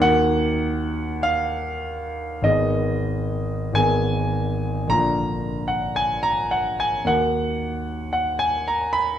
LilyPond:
<<
  \new Staff \with { instrumentName = "Grand piano" } { \time 4/4 \key ees \minor \tempo 4 = 54 ges''4 f''4 ees''4 aes''4 | bes''8. ges''16 aes''16 bes''16 ges''16 aes''16 ges''4 ges''16 aes''16 bes''16 ces'''16 | }
  \new Staff \with { instrumentName = "Grand piano" } { \clef bass \time 4/4 \key ees \minor <ees, ees bes ges'>2 <aes,, ees ces' aes'>4 <aes,, ees ces' aes'>4 | <bes,, d bes f'>2 <ees, ees bes ges'>2 | }
>>